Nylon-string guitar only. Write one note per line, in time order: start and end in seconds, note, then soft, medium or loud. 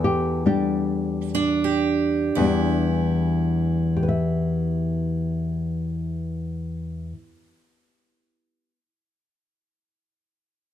0.00 2.30 E2 medium
0.00 0.45 G3 soft
0.04 0.46 G4 soft
0.46 2.39 G3 soft
0.46 2.31 D4 soft
0.46 2.31 G4 soft
2.37 7.12 E2 soft
2.37 7.14 E3 soft
2.37 3.96 G3 soft
2.43 4.02 D4 soft
2.43 3.97 G4 soft
3.97 8.72 G4 soft
4.03 8.78 B4 soft
4.08 8.84 E5 soft